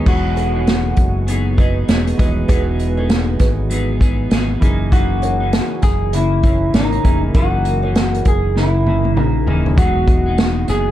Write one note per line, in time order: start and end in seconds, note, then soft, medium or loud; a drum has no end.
0.06 0.94 E1 medium
0.06 1.08 E3 medium
0.06 0.55 E3 medium
0.06 0.56 F#3 medium
0.06 1.08 G#3 medium
0.06 0.56 B3 medium
0.06 1.09 D#4 medium
0.06 0.55 D#4 medium
0.06 2.16 F#4 medium
0.06 1.09 F#4 medium
0.06 0.54 G#4 medium
0.06 kick loud
0.06 crash medium
0.36 0.54 A4 medium
0.36 0.54 C#5 medium
0.36 closed hi-hat medium
0.55 1.27 B3 soft
0.55 1.29 D#4 soft
0.55 1.30 G#4 soft
0.67 snare medium
0.67 closed hi-hat medium
0.96 1.85 F#1 medium
0.96 kick medium
0.96 closed hi-hat medium
1.27 1.56 F#3 medium
1.27 1.57 B3 medium
1.27 1.59 D#4 medium
1.27 1.60 G#4 medium
1.27 closed hi-hat medium
1.57 1.87 F#3 medium
1.57 1.88 B3 medium
1.57 1.89 D#4 medium
1.57 1.90 G#4 medium
1.57 1.76 B4 medium
1.57 1.75 D#5 medium
1.57 kick medium
1.57 closed hi-hat medium
1.88 2.13 E1 medium
1.88 2.17 F#3 medium
1.88 2.18 B3 medium
1.88 2.20 D#4 medium
1.88 2.06 G#4 medium
1.88 2.21 G#4 medium
1.88 2.06 C#5 medium
1.88 snare medium
1.88 closed hi-hat medium
2.07 closed hi-hat soft
2.18 2.43 D#1 medium
2.18 2.44 E3 medium
2.18 2.48 F#3 medium
2.18 2.45 G#3 medium
2.18 2.48 B3 medium
2.18 2.45 D#4 medium
2.18 2.49 D#4 medium
2.18 2.46 F#4 medium
2.18 2.49 G#4 medium
2.18 2.37 B4 soft
2.18 2.36 D#5 medium
2.18 kick medium
2.18 closed hi-hat medium
2.48 3.36 E1 medium
2.48 3.50 E3 medium
2.48 2.97 E3 medium
2.48 2.98 F#3 medium
2.48 2.98 B3 medium
2.48 3.51 D#4 medium
2.48 2.98 D#4 medium
2.48 3.52 F#4 medium
2.48 3.51 G#4 medium
2.48 2.78 G#4 medium
2.48 2.96 G#4 medium
2.48 2.78 B4 medium
2.48 kick medium
2.48 closed hi-hat medium
2.79 closed hi-hat medium
2.97 3.70 B3 soft
2.97 3.72 D#4 soft
2.97 3.73 G#4 soft
2.97 3.27 A4 medium
2.97 3.27 C#5 medium
3.09 snare medium
3.09 closed hi-hat medium
3.39 4.27 G#1 medium
3.39 3.58 G#4 medium
3.39 3.57 B4 medium
3.39 kick medium
3.39 snare soft
3.39 closed hi-hat medium
3.70 3.99 F#3 medium
3.70 4.00 B3 medium
3.70 4.01 D#4 medium
3.70 4.02 G#4 medium
3.70 closed hi-hat medium
4.00 4.29 F#3 medium
4.00 4.31 B3 medium
4.00 4.32 D#4 medium
4.00 4.33 G#4 medium
4.00 kick medium
4.00 closed hi-hat medium
4.30 4.56 G#1 medium
4.30 4.61 F#3 medium
4.30 4.62 B3 medium
4.30 4.62 D#4 medium
4.30 4.63 G#4 medium
4.30 snare medium
4.30 closed hi-hat medium
4.60 5.59 F#1 medium
4.60 4.92 C#3 medium
4.60 5.63 E3 medium
4.60 4.92 E3 medium
4.60 5.63 A#3 medium
4.60 4.93 A#3 medium
4.60 5.64 D#4 medium
4.60 5.64 G#4 medium
4.60 kick medium
4.60 closed hi-hat medium
4.65 4.93 D#4 medium
4.92 5.40 F#2 medium
4.92 5.41 C#3 medium
4.92 5.41 E3 medium
4.92 5.41 A#3 medium
4.92 5.39 D#4 medium
4.92 5.83 F#4 medium
4.92 kick medium
4.92 closed hi-hat medium
5.22 5.40 A#4 medium
5.22 5.40 C#5 medium
5.22 closed hi-hat medium
5.40 6.14 E3 soft
5.40 6.14 A#3 soft
5.40 6.16 D#4 soft
5.53 snare loud
5.53 closed hi-hat medium
5.82 6.70 F#1 medium
5.82 6.14 G#4 medium
5.82 kick medium
5.82 snare soft
5.82 closed hi-hat medium
6.13 6.42 C#3 medium
6.13 6.44 E3 medium
6.13 6.45 A#3 medium
6.13 6.74 E4 medium
6.13 closed hi-hat medium
6.43 6.74 E3 medium
6.43 6.75 A#3 medium
6.43 6.61 C#5 medium
6.43 6.61 E5 medium
6.43 kick medium
6.43 closed hi-hat medium
6.74 6.98 G#1 medium
6.74 7.02 C#3 medium
6.74 7.04 E3 medium
6.74 7.05 A#3 medium
6.74 7.20 D#4 medium
6.74 7.06 D#4 medium
6.74 6.92 A#4 medium
6.74 6.91 C#5 medium
6.74 snare medium
6.74 closed hi-hat medium
6.92 closed hi-hat soft
7.03 7.29 F1 medium
7.03 7.34 C#3 medium
7.03 7.30 E3 medium
7.03 7.34 E3 medium
7.03 7.30 A#3 medium
7.03 7.35 A#3 medium
7.03 7.31 D#4 medium
7.03 7.31 G#4 medium
7.03 7.22 C#5 soft
7.03 7.22 E5 medium
7.03 kick medium
7.03 closed hi-hat medium
7.07 7.36 D#4 medium
7.34 8.22 F#1 medium
7.34 7.83 F#2 medium
7.34 7.83 C#3 medium
7.34 8.36 E3 medium
7.34 7.84 E3 medium
7.34 8.37 A#3 medium
7.34 7.84 A#3 medium
7.34 8.37 D#4 medium
7.34 7.82 D#4 medium
7.34 7.64 F#4 medium
7.34 8.27 F#4 medium
7.34 8.37 G#4 medium
7.34 7.63 A#4 medium
7.34 kick loud
7.34 closed hi-hat medium
7.65 closed hi-hat medium
7.83 8.57 A#3 soft
7.83 8.59 D#4 soft
7.83 8.12 A#4 medium
7.83 8.12 C#5 medium
7.87 8.57 E3 soft
7.95 snare medium
7.95 closed hi-hat medium
8.14 closed hi-hat soft
8.25 9.17 F#1 medium
8.25 8.43 F#4 medium
8.25 8.58 G#4 medium
8.25 8.43 A#4 medium
8.25 kick medium
8.25 closed hi-hat medium
8.56 8.85 C#3 medium
8.56 8.86 E3 medium
8.56 8.87 A#3 medium
8.56 9.16 E4 medium
8.56 snare soft
8.86 9.15 C#3 soft
8.86 9.16 E3 medium
8.86 9.17 A#3 medium
8.86 high tom medium
9.05 high tom medium
9.16 9.47 A#1 medium
9.16 9.45 C#3 medium
9.16 9.47 E3 medium
9.16 9.48 A#3 medium
9.16 9.44 D#4 medium
9.16 mid tom medium
9.46 9.72 D#1 medium
9.46 9.77 C#3 medium
9.46 9.73 E3 medium
9.46 9.76 E3 medium
9.46 9.73 A#3 medium
9.46 9.78 A#3 medium
9.46 9.74 D#4 medium
9.46 9.78 D#4 medium
9.46 9.74 G#4 medium
9.46 floor tom medium
9.66 floor tom medium
9.77 10.65 E1 medium
9.77 10.79 E3 medium
9.77 10.26 E3 medium
9.77 10.27 F#3 medium
9.77 10.80 G#3 medium
9.77 10.27 B3 medium
9.77 10.80 D#4 medium
9.77 10.27 D#4 medium
9.77 10.65 F#4 medium
9.77 10.80 F#4 medium
9.77 10.91 G#4 medium
9.77 10.25 G#4 medium
9.77 10.91 F#5 medium
9.77 10.91 D#6 medium
9.77 kick loud
9.77 closed hi-hat medium
10.08 kick medium
10.08 closed hi-hat medium
10.26 10.68 B3 soft
10.26 10.69 D#4 medium
10.26 10.69 G#4 soft
10.38 snare loud
10.38 closed hi-hat medium
10.68 10.91 F#1 medium
10.68 10.91 F#3 medium
10.68 10.91 B3 medium
10.68 10.91 G#4 loud
10.68 10.91 G#4 medium
10.68 snare soft
10.68 closed hi-hat medium